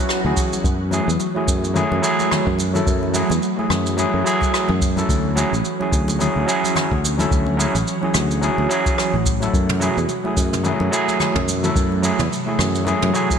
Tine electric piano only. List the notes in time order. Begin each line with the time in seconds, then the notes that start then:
Already playing: F#3 C#4 E4 B4
0.23 F#3 C#4 E4 G#4
0.91 F#3 A3 E4 G#4
1.35 F#3 A3 E4 G#4
1.74 F#3 A3 E4 G#4
2.02 F#3 A3 E4 G#4
2.30 F#3 A3 E4 G#4
2.73 F#3 A3 E4 A4
3.13 F#3 A3 E4 G#4
3.57 F#3 A3 E4 G#4
3.97 F#3 A3 E4 G#4
4.24 F#3 A3 E4 G#4
4.52 F#3 A3 E4 G#4
4.96 F#3 C#4 E4 A4
5.35 F#3 C#4 E4 G#4
5.79 F#3 C#4 E4 G#4
6.19 F#3 C#4 E4 G#4
6.46 F#3 C#4 E4 G#4
6.74 F#3 C#4 E4 G#4
7.18 F#3 C#4 E4 A4
7.57 F#3 C#4 E4 G#4
8.01 F#3 C#4 E4 G#4
8.41 F#3 C#4 E4 G#4
8.69 F#3 C#4 E4 G#4
8.97 F#3 C#4 E4 G#4
9.40 F#3 A3 E4 A4
9.80 F#3 A3 E4 G#4
10.24 F#3 A3 E4 G#4
10.64 F#3 A3 E4 G#4
10.91 F#3 A3 E4 G#4
11.19 F#3 A3 E4 G#4
11.63 F#3 A3 E4 A4
12.02 F#3 A3 E4 G#4
12.46 F#3 A3 E4 G#4
12.85 F#3 A3 E4 G#4
13.13 F#3 A3 E4 G#4